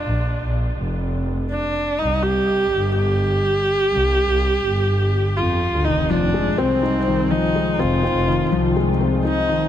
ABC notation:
X:1
M:4/4
L:1/16
Q:1/4=124
K:Fdor
V:1 name="Viola"
D4 z8 D4 | E2 G6 G8- | G12 F4 | E2 D4 C6 E4 |
F8 z4 E4 |]
V:2 name="Felt piano" clef=bass
z16 | z16 | z16 | E,2 F,2 A,2 C2 E2 E,2 F,2 A,2 |
C2 C2 E,2 F,2 A,2 C2 E2 E,2 |]
V:3 name="Double bass section" clef=bass
B,,,3 B,,,3 F,,,8 z2 | C,,6 G,,,8 z2 | C,,3 C,,3 G,,,6 F,,3 D,, | F,,,6 C,,8 z2 |
F,,,3 F,,,3 C,,8 z2 |]